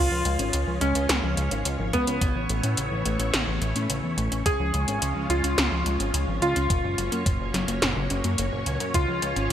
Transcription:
Already playing: G#3 C#4 F4 C#5
0.11 C#2 F3
0.25 C#2 G#3, closed hi-hat
0.39 G#1 C#4, closed hi-hat
0.53 C#2 C#3, closed hi-hat
0.67 C#2 F3
0.81 C#2 G#3 C#4, closed hi-hat
0.95 C#2 C#4, closed hi-hat
1.09 C#2 C#3, snare, closed hi-hat
1.23 C#2 F3
1.37 C#2 G#3, closed hi-hat
1.51 G#1 C#4, closed hi-hat
1.65 C#2 C#3, closed hi-hat
1.79 G#1 F3
1.93 C#2 G#3 B3, kick, closed hi-hat
2.07 C#2 C#4, closed hi-hat
2.21 A1 C#3 A3 C#4 E4, kick, closed hi-hat
2.35 A1 E3
2.49 A1 A3, closed hi-hat
2.63 A2 C#4, closed hi-hat
2.77 A1 C#3, closed hi-hat
2.92 A1 E3
3.05 A1 A3, closed hi-hat
3.20 A1 C#4, closed hi-hat
3.33 A1 C#3, snare, closed hi-hat
3.47 A1 E3
3.62 A1 A3, closed hi-hat
3.76 A2 C#4, closed hi-hat
3.90 A1 C#3, closed hi-hat
4.03 E2 E3
4.17 A1 A3, closed hi-hat
4.32 A1 C#4, closed hi-hat
4.46 C#2 C#3 G#3 F4 G#4 C#5, kick, closed hi-hat
4.60 C#2 F3
4.74 C#2 G#3, closed hi-hat
4.88 G#1 C#4, closed hi-hat
5.02 C#2 C#3, closed hi-hat
5.16 C#2 F3
5.30 C#2 G#3 F4, closed hi-hat
5.44 C#2 C#4, closed hi-hat
5.58 C#2 C#3, snare, closed hi-hat
5.72 C#2 F3
5.86 C#2 G#3, closed hi-hat
6.00 G#1 C#4, closed hi-hat
6.14 C#2 C#3, closed hi-hat
6.28 G#1 F3
6.42 C#2 G#3 F4, closed hi-hat
6.56 C#2 C#4, closed hi-hat
6.70 F#1 A#2 F#3 A#3, kick, closed hi-hat
6.84 F#1 C#3
6.98 F#1 F#3, closed hi-hat
7.12 F#2 A#3, closed hi-hat
7.26 F#1 A#2, kick, closed hi-hat
7.40 F#1 C#3
7.54 F#1 F#3, snare, closed hi-hat
7.68 F#1 A#3, closed hi-hat
7.82 F#1 A#2, snare, closed hi-hat
7.96 F#1 C#3
8.10 F#1 C#4, closed hi-hat
8.24 F#2 A#3, closed hi-hat
8.38 F#1 A#3, closed hi-hat
8.52 F#1 A#2
8.66 C#2 A#2, closed hi-hat
8.80 F#2 A#4, closed hi-hat
8.94 C#2 C#3 G#3 F4, kick, closed hi-hat
9.08 C#2 F3
9.22 C#2 G#3, closed hi-hat
9.36 G#1 C#4, closed hi-hat

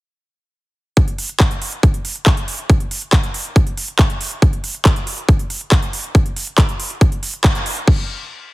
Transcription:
0.97 kick, closed hi-hat
1.08 closed hi-hat
1.18 open hi-hat
1.29 closed hi-hat
1.40 kick, clap, closed hi-hat
1.51 closed hi-hat
1.62 open hi-hat
1.72 closed hi-hat
1.83 kick, closed hi-hat
1.94 closed hi-hat
2.05 open hi-hat
2.16 closed hi-hat
2.26 kick, clap, closed hi-hat
2.37 closed hi-hat
2.48 open hi-hat
2.59 closed hi-hat
2.70 kick, closed hi-hat
2.80 closed hi-hat
2.91 open hi-hat
3.02 closed hi-hat
3.13 kick, clap, closed hi-hat
3.24 closed hi-hat
3.34 open hi-hat
3.45 closed hi-hat
3.56 kick, closed hi-hat
3.67 closed hi-hat
3.77 open hi-hat
3.88 closed hi-hat
3.99 kick, clap, closed hi-hat
4.10 closed hi-hat
4.21 open hi-hat
4.31 closed hi-hat
4.42 kick, closed hi-hat
4.53 closed hi-hat
4.64 open hi-hat
4.75 closed hi-hat
4.85 kick, clap, closed hi-hat
4.96 closed hi-hat
5.07 open hi-hat
5.18 closed hi-hat
5.29 kick, closed hi-hat
5.39 closed hi-hat
5.50 open hi-hat
5.61 closed hi-hat
5.72 kick, clap, closed hi-hat
5.83 closed hi-hat
5.93 open hi-hat
6.04 closed hi-hat
6.15 kick, closed hi-hat
6.26 closed hi-hat
6.36 open hi-hat
6.47 closed hi-hat
6.58 kick, clap, closed hi-hat
6.69 closed hi-hat
6.80 open hi-hat
6.90 closed hi-hat
7.01 kick, closed hi-hat
7.12 closed hi-hat
7.23 open hi-hat
7.34 closed hi-hat
7.44 kick, clap, closed hi-hat
7.55 closed hi-hat
7.66 open hi-hat
7.77 closed hi-hat
7.88 kick, crash

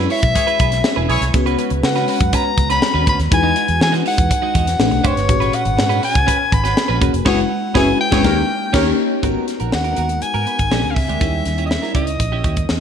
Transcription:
Already playing: G#3 C#4 E4 F#4 B4
0.10 E4 G#4 C#5 E5, open hi-hat
0.22 B1, muted clean electric guitar stroke, kick, closed hi-hat
0.35 E4 G#4 C#5, muted clean electric guitar stroke, kick, closed hi-hat
0.47 E4 G#4 B4, closed hi-hat
0.59 B1 E4 G#4 B4, kick, closed hi-hat
0.72 muted clean electric guitar stroke, snare, closed hi-hat
0.84 muted clean electric guitar stroke, snare
0.96 E1 E4 G#4 B4
1.09 B1 E4 G#4 B4 C#5, open hi-hat
1.21 C2, muted clean electric guitar stroke, snare, closed hi-hat
1.34 C#2 G#3 B3 C#4 F#4 B4, muted clean electric guitar stroke, kick, closed hi-hat
1.46 C#4 F#4 B4, closed hi-hat
1.58 C#4 F#4 B4, closed hi-hat
1.70 C#2, muted clean electric guitar stroke, closed hi-hat
1.83 C#3 F#5, muted clean electric guitar stroke, snare
1.96 C#4 F#4 B4, snare, closed hi-hat
2.08 C#4 F#4 B4, open hi-hat
2.20 F#2, muted clean electric guitar stroke, kick, closed hi-hat
2.33 C#4 F#4 B4 A#5, kick, closed hi-hat
2.45 muted clean electric guitar stroke
2.57 C#2, muted clean electric guitar stroke, kick, closed hi-hat
2.70 C#4 F#4 B4 B5, snare, closed hi-hat
2.82 muted clean electric guitar stroke, snare
2.94 D#2 C#4 F#4 B4
3.06 D2 C#4 F#4 B4 B5, kick, closed hi-hat
3.19 D#2, muted clean electric guitar stroke, snare, closed hi-hat
3.31 E2 G#3 D#4 E4 F#4 B4 G#5, muted clean electric guitar stroke, kick, closed hi-hat
3.43 G#3 D#4 F#4
3.55 G#3 D#4 F#4, closed hi-hat
3.68 E2, muted clean electric guitar stroke, closed hi-hat
3.81 E3 G#5, muted clean electric guitar stroke, snare
3.92 G#3 D#4 F#4, snare, closed hi-hat
4.05 G#3 D#4 G#4 F#5, open hi-hat
4.18 E2, muted clean electric guitar stroke, kick, closed hi-hat
4.29 muted clean electric guitar stroke, kick, closed hi-hat
4.42 G#3 D#4 F#4
4.54 E2 G#3 D#4 F#4, kick, closed hi-hat
4.66 muted clean electric guitar stroke, snare, closed hi-hat
4.79 A1 A3 C4 D4 G4 B4, snare
4.91 B1, muted clean electric guitar stroke, closed hi-hat
5.04 F#1 D4 G4 C5 C#5, kick, closed hi-hat
5.16 G1, muted clean electric guitar stroke, snare, closed hi-hat
5.28 G#1 A#2 C#4 F#4 G#4 B4, muted clean electric guitar stroke, kick, closed hi-hat
5.40 C#4 F#4 B4, closed hi-hat
5.52 C#4 F#4 B4 F#5, closed hi-hat
5.65 G#1, muted clean electric guitar stroke, closed hi-hat
5.77 G#2, muted clean electric guitar stroke, snare
5.89 C#4 F#4 B4, closed hi-hat
6.02 C#4 F#4 B4 G#5, open hi-hat
6.14 C#2, muted clean electric guitar stroke, kick, closed hi-hat
6.26 C#4 F#4 B4, kick, closed hi-hat
6.39 muted clean electric guitar stroke
6.52 G#1 B5, muted clean electric guitar stroke, kick, closed hi-hat
6.64 C#4 F#4 B4, snare, closed hi-hat
6.76 muted clean electric guitar stroke, snare
6.88 A#1 C#4 F#4 B4
7.01 E1 A#3 C#4 F#4 G#4 A#4 B4, kick, closed hi-hat
7.14 F1, muted clean electric guitar stroke, closed hi-hat
7.25 F#1 G#3 C#4 E4 F#4 G#4 B4 C#5 F#5, kick, snare, crash
7.74 F#1 G#3 C#4 E4 F#4 G#4 B4 C#5 G#5, kick, snare
8.01 G5
8.11 F#1 G#3 C#4 E4 F#4 G#4 B4 C#5, kick, snare
8.23 D#2 A#3 C#4 D#4 G4 A#4 C#5, kick, snare
8.73 D#2 A#3 C#4 D#4 G4 A#4 C#5, kick, snare, crash
9.22 G#1 G#3 B3 D#4 F#4 A#4, kick, closed hi-hat
9.47 muted clean electric guitar stroke, snare, closed hi-hat
9.60 A#1 B3 F#4 A#4, closed hi-hat
9.72 D#2 F#5, muted clean electric guitar stroke, snare
9.84 B3 F#4 A#4, closed hi-hat
9.97 D#2 B3 F#4 A#4, closed hi-hat
10.09 muted clean electric guitar stroke, closed hi-hat
10.22 G#5, muted clean electric guitar stroke, closed hi-hat
10.34 G#2 B3 F#4 A#4, closed hi-hat
10.46 B3 F#4 B4, closed hi-hat
10.58 G#1, muted clean electric guitar stroke, kick, closed hi-hat
10.71 A#1 G#3 C4 D4 G4 A#4, snare
10.83 D2, muted clean electric guitar stroke
10.90 F5
10.95 C#2 E5, muted clean electric guitar stroke, kick, open hi-hat
11.08 D2 G#3 D4 G4, closed hi-hat
11.20 D#2 G3 C#4 D#4 E4 G4 A#4, kick, closed hi-hat
11.45 D#2, muted clean electric guitar stroke, snare, closed hi-hat
11.58 C#4 E4 G4, closed hi-hat
11.66 D#5
11.70 E5, muted clean electric guitar stroke, snare
11.82 C#4 E4 A#4, snare
11.95 C#2 C#4 E4 G4 D#5, kick, closed hi-hat
12.07 muted clean electric guitar stroke, closed hi-hat
12.20 A#1, muted clean electric guitar stroke, kick, closed hi-hat
12.32 C#4 E4 G4
12.44 D#2 C#4 E4 G4, kick, closed hi-hat
12.57 muted clean electric guitar stroke, kick, closed hi-hat
12.69 E2, muted clean electric guitar stroke, snare

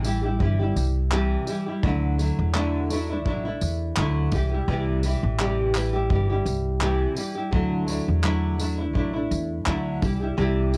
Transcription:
Already playing: A1
0.03 E3 G3 E4 G4, tambourine
0.23 G3 E4 G4
0.39 G1 E3 G3 E4 G4, kick
0.59 G3 E4 G4
0.76 C2, tambourine
1.11 C3 E3 G3 E4 G4, clap
1.47 E3 G3 E4 G4, tambourine
1.66 G3 E4 G4
1.83 D2 D3 F#3 A3 D4 E4, kick
2.18 F#3 A3 D4 E4, tambourine
2.39 E2
2.54 D3 F#3 A3 D4 E4, clap
2.90 F#3 A3 D4 E4, tambourine
3.09 A3 D4 E4
3.25 A1 F#3 A3 D4 E4, kick
3.45 A3 D4 E4
3.61 E2, tambourine
3.97 D2 D3 F#3 A3 D4 E4, clap
4.32 C2 E3 G3 E4 G4, kick, tambourine
4.52 G3 E4 G4
4.68 C2 C3 E3 G3 E4 G4
5.03 E3 G3 E4 G4, tambourine
5.23 A1
5.39 C3 E3 G3 E4 G4, clap
5.74 E3 G3 E4 G4, clap, tambourine
5.93 G3 E4 G4
6.10 G1 E3 G3 E4 G4, kick
6.30 G3 E4 G4
6.46 C2, tambourine
6.80 C3 E3 G3 E4 G4, clap
7.15 E3 G3 E4 G4, tambourine
7.35 G3 E4 G4
7.51 D2 D3 F#3 A3 D4 E4, kick
7.87 F#3 A3 D4 E4, tambourine
8.08 E2
8.22 D3 F#3 A3 D4 E4, clap
8.58 F#3 A3 D4 E4, tambourine
8.78 A3 D4 E4
8.93 A1 F#3 A3 D4 E4, kick
9.13 A3 D4 E4
9.31 E2, tambourine
9.66 D2 D3 F#3 A3 D4 E4, clap
10.01 C2 E3 G3 E4 G4, kick, tambourine
10.21 G3 E4 G4
10.37 C2 C3 E3 G3 E4 G4
10.72 E3 G3, tambourine

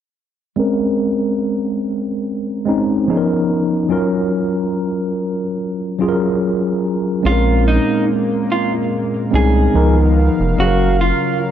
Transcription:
0.56 G#3 C4 C#4 A#4
2.65 G#3 C4 C#4 D#4
3.08 F3 B3 C#4 D#4 G#4
3.17 A#4
3.89 F#3 C#4 F4 A#4
5.99 F#3 C#4 F4 G#4
6.09 A#4
7.23 A#1 A#2 G#3 A#3 C4 C#4 F4 G#4 A#4
7.32 A#4
7.68 D#4
8.52 F4
9.31 C2 G#3 C4 C#4 D#4
9.35 G#4
9.73 C#2 D#3 F3 B3 D#4 F5
9.77 A#4
10.40 F1
10.56 F#1 C#3 F#3 C#4 F#4 F5
10.61 G#4
10.67 A#4
11.01 F4

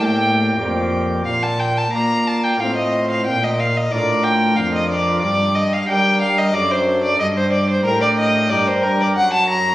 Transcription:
Already playing: A2 A#3 G4 D5
0.04 G5
0.57 F2 A#3 G4 D5
1.25 A#2 F5
1.43 A5
1.60 G5
1.78 A5
1.92 A#3 F4 D5 A#5
2.27 A5
2.44 G5
2.60 A2 C4 F4 C5 F5
2.76 D#5
3.11 F5
3.26 A#2 G5
3.44 D#5
3.60 F5
3.77 D#5
3.92 A2 D4 F4 A#4 D5
4.24 G5
4.57 F2 D4 F4 A#4 F5
4.75 D#5
4.90 D5
5.22 G2 D5
5.56 D#5
5.73 F5
5.89 G3 D4 G4 A#4 G5
6.22 F5
6.39 D#5
6.54 F#2 D4 A4 D5
6.71 C5
7.04 D5
7.19 G2 D#5
7.38 C5
7.53 D5
7.70 C5
7.84 A2 D4 G4 A#4
8.02 D5
8.18 D#5
8.50 G2 D4 G4 A#4 D5
8.68 C5
8.83 A#4
9.01 D5
9.16 F#2 F#5
9.34 A5
9.50 A#5

